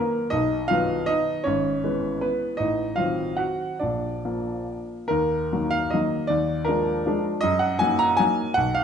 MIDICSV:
0, 0, Header, 1, 2, 480
1, 0, Start_track
1, 0, Key_signature, -6, "minor"
1, 0, Tempo, 377834
1, 421, Time_signature, 3, 2, 24, 8
1, 3802, Tempo, 414365
1, 4762, Tempo, 439883
1, 5722, Tempo, 408441
1, 7162, Tempo, 378072
1, 10860, End_track
2, 0, Start_track
2, 0, Title_t, "Grand piano"
2, 0, Program_c, 0, 0
2, 0, Note_on_c, 0, 51, 56
2, 0, Note_on_c, 0, 54, 55
2, 0, Note_on_c, 0, 58, 63
2, 0, Note_on_c, 0, 70, 84
2, 365, Note_off_c, 0, 51, 0
2, 367, Note_off_c, 0, 54, 0
2, 379, Note_off_c, 0, 58, 0
2, 384, Note_on_c, 0, 75, 110
2, 389, Note_on_c, 0, 63, 78
2, 404, Note_off_c, 0, 70, 0
2, 409, Note_on_c, 0, 35, 73
2, 628, Control_c, 0, 64, 127
2, 842, Note_off_c, 0, 63, 0
2, 862, Note_on_c, 0, 77, 112
2, 872, Note_off_c, 0, 35, 0
2, 874, Note_off_c, 0, 75, 0
2, 880, Note_on_c, 0, 65, 80
2, 901, Note_on_c, 0, 51, 57
2, 901, Note_on_c, 0, 54, 54
2, 911, Note_on_c, 0, 59, 61
2, 1341, Note_off_c, 0, 65, 0
2, 1350, Note_on_c, 0, 75, 109
2, 1366, Note_off_c, 0, 77, 0
2, 1374, Note_on_c, 0, 63, 78
2, 1401, Control_c, 0, 64, 0
2, 1813, Note_off_c, 0, 51, 0
2, 1813, Note_off_c, 0, 54, 0
2, 1818, Note_off_c, 0, 59, 0
2, 1822, Note_off_c, 0, 63, 0
2, 1825, Note_on_c, 0, 73, 100
2, 1841, Note_on_c, 0, 61, 73
2, 1844, Note_off_c, 0, 75, 0
2, 1865, Note_on_c, 0, 32, 75
2, 2069, Control_c, 0, 64, 127
2, 2334, Note_off_c, 0, 32, 0
2, 2334, Note_on_c, 0, 56, 54
2, 2335, Note_on_c, 0, 52, 57
2, 2336, Note_on_c, 0, 59, 62
2, 2786, Note_off_c, 0, 61, 0
2, 2808, Note_off_c, 0, 59, 0
2, 2811, Note_on_c, 0, 71, 91
2, 2827, Note_on_c, 0, 59, 69
2, 2829, Note_off_c, 0, 73, 0
2, 2861, Control_c, 0, 64, 0
2, 3261, Note_off_c, 0, 52, 0
2, 3261, Note_off_c, 0, 56, 0
2, 3265, Note_on_c, 0, 75, 92
2, 3274, Note_off_c, 0, 59, 0
2, 3282, Note_on_c, 0, 63, 73
2, 3297, Note_on_c, 0, 33, 65
2, 3300, Note_off_c, 0, 71, 0
2, 3542, Control_c, 0, 64, 127
2, 3748, Note_off_c, 0, 63, 0
2, 3757, Note_on_c, 0, 77, 94
2, 3766, Note_on_c, 0, 65, 71
2, 3774, Note_off_c, 0, 75, 0
2, 3775, Note_off_c, 0, 33, 0
2, 3778, Note_on_c, 0, 51, 49
2, 3784, Note_on_c, 0, 54, 47
2, 3799, Note_on_c, 0, 60, 53
2, 4229, Note_off_c, 0, 65, 0
2, 4234, Note_on_c, 0, 78, 86
2, 4248, Note_on_c, 0, 66, 68
2, 4259, Note_off_c, 0, 77, 0
2, 4297, Control_c, 0, 64, 0
2, 4705, Note_off_c, 0, 51, 0
2, 4708, Note_off_c, 0, 54, 0
2, 4712, Note_off_c, 0, 66, 0
2, 4715, Note_off_c, 0, 60, 0
2, 4731, Note_on_c, 0, 74, 73
2, 4739, Note_off_c, 0, 78, 0
2, 4742, Note_on_c, 0, 62, 58
2, 4767, Note_on_c, 0, 34, 56
2, 5013, Control_c, 0, 64, 127
2, 5223, Note_on_c, 0, 53, 43
2, 5227, Note_off_c, 0, 34, 0
2, 5232, Note_on_c, 0, 58, 49
2, 5731, Control_c, 0, 64, 0
2, 5916, Note_off_c, 0, 62, 0
2, 5958, Note_off_c, 0, 74, 0
2, 6159, Note_off_c, 0, 53, 0
2, 6164, Note_off_c, 0, 58, 0
2, 6164, Note_on_c, 0, 70, 98
2, 6196, Note_on_c, 0, 39, 69
2, 6411, Control_c, 0, 64, 127
2, 6666, Note_off_c, 0, 39, 0
2, 6687, Note_on_c, 0, 51, 54
2, 6694, Note_on_c, 0, 54, 53
2, 6695, Note_on_c, 0, 58, 59
2, 6902, Note_on_c, 0, 77, 113
2, 6905, Note_off_c, 0, 70, 0
2, 7113, Note_off_c, 0, 51, 0
2, 7116, Note_off_c, 0, 54, 0
2, 7117, Note_off_c, 0, 58, 0
2, 7136, Note_on_c, 0, 75, 91
2, 7147, Note_off_c, 0, 77, 0
2, 7171, Note_on_c, 0, 51, 56
2, 7174, Note_on_c, 0, 58, 58
2, 7175, Note_on_c, 0, 54, 58
2, 7180, Control_c, 0, 64, 0
2, 7597, Note_off_c, 0, 51, 0
2, 7599, Note_off_c, 0, 54, 0
2, 7599, Note_off_c, 0, 58, 0
2, 7603, Note_on_c, 0, 74, 107
2, 7626, Note_off_c, 0, 75, 0
2, 7632, Note_on_c, 0, 39, 73
2, 7904, Control_c, 0, 64, 127
2, 8075, Note_on_c, 0, 70, 96
2, 8099, Note_off_c, 0, 74, 0
2, 8100, Note_off_c, 0, 39, 0
2, 8111, Note_on_c, 0, 53, 55
2, 8118, Note_on_c, 0, 62, 60
2, 8124, Note_on_c, 0, 56, 59
2, 8555, Note_off_c, 0, 53, 0
2, 8558, Note_off_c, 0, 62, 0
2, 8562, Note_off_c, 0, 56, 0
2, 8599, Note_on_c, 0, 53, 59
2, 8611, Note_on_c, 0, 56, 62
2, 8619, Note_on_c, 0, 62, 63
2, 8622, Control_c, 0, 64, 0
2, 8823, Note_off_c, 0, 70, 0
2, 9025, Note_off_c, 0, 53, 0
2, 9031, Note_off_c, 0, 56, 0
2, 9035, Note_off_c, 0, 62, 0
2, 9040, Note_on_c, 0, 75, 117
2, 9072, Note_on_c, 0, 42, 78
2, 9277, Control_c, 0, 64, 127
2, 9278, Note_on_c, 0, 78, 101
2, 9291, Note_off_c, 0, 75, 0
2, 9528, Note_on_c, 0, 80, 118
2, 9538, Note_off_c, 0, 42, 0
2, 9539, Note_off_c, 0, 78, 0
2, 9553, Note_on_c, 0, 54, 63
2, 9556, Note_on_c, 0, 58, 58
2, 9569, Note_on_c, 0, 63, 68
2, 9780, Note_on_c, 0, 82, 127
2, 9792, Note_off_c, 0, 80, 0
2, 9997, Note_off_c, 0, 54, 0
2, 9998, Note_off_c, 0, 58, 0
2, 10005, Note_off_c, 0, 63, 0
2, 10006, Note_on_c, 0, 80, 117
2, 10034, Note_off_c, 0, 82, 0
2, 10041, Note_on_c, 0, 58, 62
2, 10042, Note_on_c, 0, 54, 62
2, 10052, Note_on_c, 0, 63, 68
2, 10064, Control_c, 0, 64, 0
2, 10468, Note_off_c, 0, 58, 0
2, 10469, Note_off_c, 0, 54, 0
2, 10475, Note_off_c, 0, 63, 0
2, 10483, Note_on_c, 0, 78, 124
2, 10498, Note_off_c, 0, 80, 0
2, 10519, Note_on_c, 0, 35, 76
2, 10737, Control_c, 0, 64, 127
2, 10740, Note_off_c, 0, 78, 0
2, 10741, Note_on_c, 0, 77, 108
2, 10860, Note_off_c, 0, 35, 0
2, 10860, Note_off_c, 0, 77, 0
2, 10860, End_track
0, 0, End_of_file